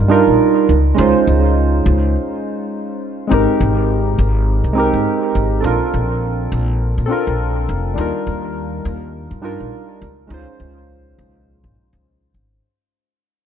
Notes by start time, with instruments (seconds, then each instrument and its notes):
Already playing: upright bass G2, synth keys G3 D4 D#4 F4 A#4
0.08 synth keys G3 D4 D#4 F4 A#4
0.27 upright bass A#1
0.69 upright bass C#2
0.95 upright bass C#2, synth keys G#3 C#4 D#4
0.99 synth keys F4 C5
1.27 upright bass C#2
1.86 upright bass C#2
3.27 upright bass G#1, synth keys G#3 C4 D#4
3.32 synth keys G4 A#4
3.60 upright bass G#1
4.18 upright bass G#1
4.64 upright bass C2
4.73 synth keys G#3 C4 D#4
4.78 synth keys G4 A#4
4.93 upright bass G#2
5.35 upright bass G#1
5.61 upright bass A#1, synth keys C4 D4 A4
5.65 synth keys F4 A#4
5.94 upright bass A#1
6.52 upright bass A#1
6.98 upright bass A#2
7.06 synth keys C4 D4 A4
7.11 synth keys F4 A#4
7.27 upright bass A#1
7.69 upright bass F1
7.94 upright bass D#2, synth keys G3 D4 D#4
7.99 synth keys F4 A#4
8.27 upright bass D#2
8.85 upright bass D#2
9.31 upright bass G2
9.42 synth keys G3 D4 D#4 F4 A#4
9.60 upright bass A#1
10.02 upright bass C#2
10.27 upright bass C#2, synth keys G#3 C#4 D#4
10.32 synth keys F4 C5
10.60 upright bass C#2
11.18 upright bass C#2
11.64 upright bass G#1
11.93 upright bass C#2
12.34 upright bass G#1